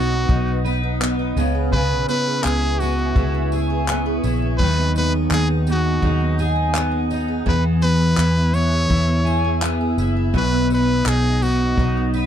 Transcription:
Already playing: fingered electric bass B1, twelve-string acoustic guitar B2 F#3 B3 D#4, steel-string acoustic guitar F#3 B3 D#4, trumpet F#4, ambient pad B4 D#5 F#5 D#6
0.12 steel-string acoustic guitar D#4
0.28 fingered electric bass B1, steel-string acoustic guitar F#3 D#4, twelve-string acoustic guitar D#4, kick
0.48 steel-string acoustic guitar F#3
0.64 steel-string acoustic guitar B3, twelve-string acoustic guitar B4, tambourine
0.83 steel-string acoustic guitar D#4
1.01 steel-string acoustic guitar F#3, twelve-string acoustic guitar B3, clap
1.19 steel-string acoustic guitar D#4
1.36 fingered electric bass C#2, twelve-string acoustic guitar C#3, steel-string acoustic guitar B3, ambient pad E5 G#5 C#6, tambourine
1.55 steel-string acoustic guitar G#4
1.72 twelve-string acoustic guitar C#3, steel-string acoustic guitar B3 G#4, trumpet B4, kick
1.91 steel-string acoustic guitar B3
2.09 twelve-string acoustic guitar B3, steel-string acoustic guitar E4, trumpet B4, tambourine
2.27 steel-string acoustic guitar G#4
2.43 fingered electric bass C#2, steel-string acoustic guitar B3, twelve-string acoustic guitar E4, trumpet G#4, clap
2.62 steel-string acoustic guitar G#4
2.79 twelve-string acoustic guitar B3, steel-string acoustic guitar E4, trumpet F#4, tambourine
2.99 steel-string acoustic guitar G#4
3.16 fingered electric bass C#2, steel-string acoustic guitar B3 G#4, twelve-string acoustic guitar E4, kick
3.34 steel-string acoustic guitar B3
3.52 steel-string acoustic guitar E4, twelve-string acoustic guitar G#4, tambourine
3.70 steel-string acoustic guitar G#4
3.87 steel-string acoustic guitar B3, twelve-string acoustic guitar B3, clap
4.06 steel-string acoustic guitar G#4
4.23 fingered electric bass A#1, steel-string acoustic guitar E4, twelve-string acoustic guitar E4, tambourine
4.42 steel-string acoustic guitar G#4
4.58 fingered electric bass D#2, twelve-string acoustic guitar D#3, steel-string acoustic guitar F#3 G#4, ambient pad B3 F#5 G#5 D#6, trumpet B4, kick
4.77 steel-string acoustic guitar B3
4.95 twelve-string acoustic guitar B3, steel-string acoustic guitar D#4, trumpet B4, tambourine
5.13 steel-string acoustic guitar G#4
5.31 fingered electric bass D#2, steel-string acoustic guitar B3, twelve-string acoustic guitar D#4, trumpet G#4, clap
5.49 steel-string acoustic guitar G#4
5.67 twelve-string acoustic guitar B3, steel-string acoustic guitar D#4, trumpet F#4, tambourine
5.85 steel-string acoustic guitar G#4
6.02 fingered electric bass D#2, steel-string acoustic guitar F#3 G#4, twelve-string acoustic guitar D#4, kick
6.21 steel-string acoustic guitar B3
6.38 steel-string acoustic guitar D#4, twelve-string acoustic guitar G#4, tambourine
6.56 steel-string acoustic guitar G#4
6.74 steel-string acoustic guitar B3, twelve-string acoustic guitar B3, clap
6.91 steel-string acoustic guitar G#4
7.10 steel-string acoustic guitar D#4, twelve-string acoustic guitar D#4, tambourine
7.28 steel-string acoustic guitar G#4
7.46 fingered electric bass E2, steel-string acoustic guitar E3 G#4, twelve-string acoustic guitar E3, trumpet B4, ambient pad E5 E6, kick
7.64 steel-string acoustic guitar B3
7.81 twelve-string acoustic guitar B3, steel-string acoustic guitar E4, trumpet B4, tambourine
8.00 steel-string acoustic guitar G#4
8.17 fingered electric bass E2, steel-string acoustic guitar B3, twelve-string acoustic guitar E4, clap
8.36 steel-string acoustic guitar G#4
8.53 twelve-string acoustic guitar B3, steel-string acoustic guitar E4, trumpet C#5, tambourine
8.72 steel-string acoustic guitar G#4
8.89 fingered electric bass E2, steel-string acoustic guitar E3 G#4, twelve-string acoustic guitar E4, kick
9.08 steel-string acoustic guitar B3
9.25 steel-string acoustic guitar E4, twelve-string acoustic guitar G#4, tambourine
9.44 steel-string acoustic guitar G#4
9.62 twelve-string acoustic guitar B3, steel-string acoustic guitar B3, clap
9.81 steel-string acoustic guitar G#4
9.97 fingered electric bass F#1, steel-string acoustic guitar E4, twelve-string acoustic guitar E4, tambourine
10.17 steel-string acoustic guitar G#4
10.33 fingered electric bass B1, twelve-string acoustic guitar B2, steel-string acoustic guitar F#3 F#4, trumpet B4, ambient pad D#5 F#5 D#6, kick
10.52 steel-string acoustic guitar B3
10.68 twelve-string acoustic guitar B3, steel-string acoustic guitar D#4, tambourine
10.74 trumpet B4
10.88 steel-string acoustic guitar F#4
11.06 fingered electric bass B1, steel-string acoustic guitar B3, twelve-string acoustic guitar D#4, trumpet G#4, clap
11.24 steel-string acoustic guitar F#4
11.41 twelve-string acoustic guitar B3, steel-string acoustic guitar D#4, trumpet F#4, tambourine
11.61 steel-string acoustic guitar F#4
11.77 fingered electric bass B1, steel-string acoustic guitar F#3 F#4, twelve-string acoustic guitar D#4, kick
11.97 steel-string acoustic guitar B3
12.14 steel-string acoustic guitar D#4, twelve-string acoustic guitar B4, tambourine

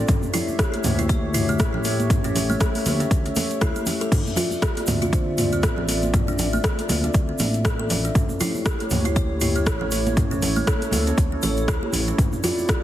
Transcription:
0.08 analog synth bass D2, analog synth pad A3 G4 C#5 E5, kalimba C#4, kick, closed hi-hat, mid tom, shaker
0.22 muted conga, shaker
0.34 kalimba E4, open hi-hat, low conga, shaker
0.48 muted conga, high conga, shaker
0.59 kalimba G4, kick, cross-stick, closed hi-hat, shaker
0.73 kalimba A3, closed hi-hat, muted conga
0.84 analog synth bass D2, mid tom, open hi-hat, high conga, low conga, shaker
0.99 kalimba E4, closed hi-hat, muted conga, high conga, shaker
1.09 kalimba C#5, kick, closed hi-hat, high conga, shaker
1.34 kalimba E4, mid tom, open hi-hat, muted conga, high conga, shaker
1.49 kalimba A3, closed hi-hat, shaker
1.59 analog synth bass A1, kick, cross-stick, closed hi-hat, muted conga, shaker
1.74 kalimba A3, low conga
1.84 kalimba A4, open hi-hat, muted conga, shaker
2.00 closed hi-hat, high conga, shaker
2.10 kalimba C#4, kick, closed hi-hat, mid tom, shaker
2.24 kalimba C#4, closed hi-hat, muted conga, shaker
2.36 open hi-hat, low conga, shaker
2.50 kalimba A3, muted conga, high conga, shaker
2.60 kalimba A4, kick, cross-stick, closed hi-hat, shaker
2.75 open hi-hat, muted conga, shaker
2.85 analog synth bass D2, kalimba A4, open hi-hat, high conga, low conga, shaker
3.00 kalimba C#4, closed hi-hat, muted conga, high conga, shaker
3.11 analog synth bass D2, kick, closed hi-hat, shaker
3.25 kalimba C#4, closed hi-hat
3.36 kalimba A4, open hi-hat, muted conga, high conga, low conga, shaker
3.50 closed hi-hat, shaker
3.61 analog synth bass D2, kalimba E4, kick, cross-stick, closed hi-hat, muted conga, shaker
3.76 kalimba A3, closed hi-hat, high conga, shaker
3.86 open hi-hat, muted conga, low conga, shaker
4.01 kalimba A4, closed hi-hat, shaker
4.12 analog synth bass D2, analog synth pad C4 F4 D5, kalimba D4, kick, closed hi-hat, mid tom, crash, shaker
4.26 muted conga, shaker
4.36 kalimba F4, open hi-hat, low conga, shaker
4.51 muted conga, high conga, shaker
4.62 kalimba G4, kick, cross-stick, closed hi-hat, shaker
4.77 kalimba A3, closed hi-hat, muted conga
4.87 analog synth bass D2, mid tom, open hi-hat, high conga, low conga, shaker
5.02 kalimba F4, closed hi-hat, muted conga, high conga, shaker
5.12 kalimba C5, kick, closed hi-hat, high conga, shaker
5.38 kalimba F4, mid tom, open hi-hat, muted conga, high conga, shaker
5.52 kalimba A3, closed hi-hat, shaker
5.62 analog synth bass A1, kick, cross-stick, closed hi-hat, muted conga, shaker
5.77 kalimba A3, low conga
5.88 kalimba A4, open hi-hat, muted conga, shaker
6.02 closed hi-hat, high conga, shaker
6.14 kalimba D4, kick, closed hi-hat, mid tom, shaker
6.27 kalimba D4, muted conga, shaker
6.39 open hi-hat, low conga, shaker
6.53 kalimba A3, muted conga, high conga, shaker
6.64 kalimba A4, kick, cross-stick, closed hi-hat, shaker
6.79 closed hi-hat, muted conga
6.89 analog synth bass D2, kalimba A4, open hi-hat, high conga, low conga, shaker
7.04 kalimba D4, closed hi-hat, muted conga, high conga, shaker
7.14 analog synth bass D2, kick, closed hi-hat, shaker
7.29 kalimba C4
7.39 analog synth bass A1, kalimba D4, open hi-hat, muted conga, high conga, low conga, shaker
7.54 closed hi-hat, shaker
7.65 kalimba A4, kick, cross-stick, closed hi-hat, shaker
7.79 kalimba A4, high conga
7.90 open hi-hat, muted conga, low conga, shaker
8.04 kalimba D4, closed hi-hat, shaker
8.15 analog synth bass D2, analog synth pad A3 E4 G4 C#5, kalimba C#4, kick, closed hi-hat, mid tom, shaker
8.29 muted conga, shaker
8.40 kalimba E4, open hi-hat, low conga, shaker
8.54 muted conga, high conga, shaker
8.66 kalimba G4, kick, cross-stick, closed hi-hat, shaker
8.80 kalimba A3, closed hi-hat, muted conga
8.90 analog synth bass D2, mid tom, open hi-hat, high conga, low conga, shaker
9.04 kalimba E4, closed hi-hat, muted conga, high conga, shaker
9.15 kalimba C#5, kick, closed hi-hat, high conga, shaker
9.41 kalimba E4, mid tom, open hi-hat, muted conga, high conga, shaker
9.56 kalimba A3, closed hi-hat, shaker
9.66 analog synth bass A1, kick, cross-stick, closed hi-hat, muted conga, shaker
9.81 kalimba A3, low conga
9.91 kalimba A4, open hi-hat, muted conga, shaker
10.06 closed hi-hat, high conga, shaker
10.17 kalimba C#4, analog synth pad A4, kick, closed hi-hat, mid tom, shaker
10.30 kalimba C#4, muted conga, shaker
10.42 open hi-hat, low conga, shaker
10.56 kalimba A3, muted conga, high conga, shaker
10.67 kalimba A4, kick, cross-stick, closed hi-hat, shaker
10.81 closed hi-hat, muted conga, shaker
10.91 analog synth bass D2, kalimba A4, open hi-hat, high conga, low conga, shaker
11.07 kalimba C#4, closed hi-hat, muted conga, high conga, shaker
11.18 analog synth bass D2, kick, closed hi-hat, shaker
11.32 kalimba C#4
11.42 analog synth bass A1, kalimba C#5, open hi-hat, muted conga, high conga, low conga, shaker
11.57 closed hi-hat, shaker
11.68 analog synth bass D2, kalimba E4, kick, cross-stick, closed hi-hat, muted conga, shaker
11.82 kalimba G4, high conga
11.93 analog synth bass A1, open hi-hat, muted conga, low conga, shaker
12.07 kalimba C#4, closed hi-hat, shaker
12.18 analog synth bass D2, analog synth pad C4 F4 D5, kalimba D4, kick, closed hi-hat, mid tom, shaker
12.33 muted conga, shaker
12.43 kalimba F4, open hi-hat, low conga, shaker
12.58 muted conga, high conga, shaker
12.68 kick, cross-stick, closed hi-hat, shaker

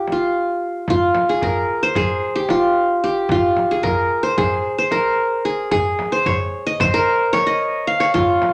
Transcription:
Already playing: qanun F4 G4
0.07 frame drum
0.12 qanun F4
0.88 qanun F4, frame drum, darbuka dum
1.15 darbuka tek, frame drum
1.29 qanun G#4, darbuka ka
1.41 qanun A#4, darbuka dum, frame drum
1.69 darbuka ka
1.83 qanun C5
1.95 qanun G#4, darbuka dum, frame drum
2.23 darbuka ka
2.35 qanun G4
2.49 qanun F4, darbuka tek, frame drum
3.04 qanun G4
3.29 qanun F4, frame drum, darbuka dum
3.57 darbuka tek, frame drum
3.71 qanun G#4, darbuka ka
3.83 qanun A#4, frame drum, darbuka dum
4.12 darbuka ka
4.23 qanun C5
4.38 qanun G#4, frame drum, darbuka dum
4.66 darbuka ka
4.78 qanun C5
4.91 qanun A#4, darbuka tek, frame drum
5.45 qanun G#4
5.71 qanun G#4, frame drum, darbuka dum
5.99 darbuka tek, frame drum
6.12 qanun C5, darbuka ka
6.26 qanun C#5, frame drum, darbuka dum
6.54 darbuka ka
6.67 qanun D#5
6.80 qanun C5, frame drum, darbuka dum
6.94 qanun A#4
7.08 darbuka ka
7.33 qanun C#5, darbuka tek, frame drum
7.47 qanun D#5
7.87 qanun F5
8.00 qanun C#5
8.14 qanun F4, frame drum, darbuka dum
8.30 darbuka ka
8.42 darbuka tek, frame drum

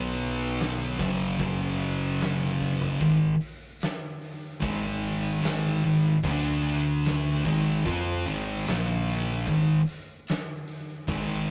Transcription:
Already playing: picked electric bass B1, distorted electric guitar B2 F#3 B3
0.18 open hi-hat
0.58 snare, open hi-hat
0.98 picked electric bass F#1, distorted electric guitar F#2 C#3 F#3, kick, open hi-hat
1.39 picked electric bass F#1, distorted electric guitar F#2 C#3 F#3, kick, open hi-hat
1.79 open hi-hat
2.20 snare, open hi-hat
2.61 kick
2.80 floor tom
3.01 picked electric bass G#1, distorted electric guitar G#2 D#3, kick, open hi-hat
3.41 open hi-hat
3.80 snare, open hi-hat
4.22 open hi-hat
4.61 picked electric bass G#1, distorted electric guitar G#2 D#3 G#3, kick, open hi-hat
5.03 open hi-hat
5.42 picked electric bass G#1, distorted electric guitar G#2 D#3 G#3, snare, open hi-hat
5.83 picked electric bass G#1, distorted electric guitar G#2 D#3, open hi-hat
6.23 picked electric bass D2, distorted electric guitar D3 A3 D4, kick, open hi-hat
6.64 open hi-hat
7.04 snare, open hi-hat
7.45 picked electric bass G#1, distorted electric guitar G#2 D#3 G#3, kick, open hi-hat
7.84 picked electric bass F2, distorted electric guitar F3 C4 F4, kick, open hi-hat
8.25 picked electric bass G#1, distorted electric guitar G#2 D#3 G#3, open hi-hat
8.66 picked electric bass A#1, distorted electric guitar A#2 F3 A#3, snare, open hi-hat
9.08 open hi-hat
9.47 picked electric bass G#1, distorted electric guitar G#2 D#3, kick, open hi-hat
9.88 open hi-hat
10.27 snare, open hi-hat
10.68 open hi-hat
11.07 picked electric bass G#1, distorted electric guitar G#2 D#3 G#3, kick, open hi-hat

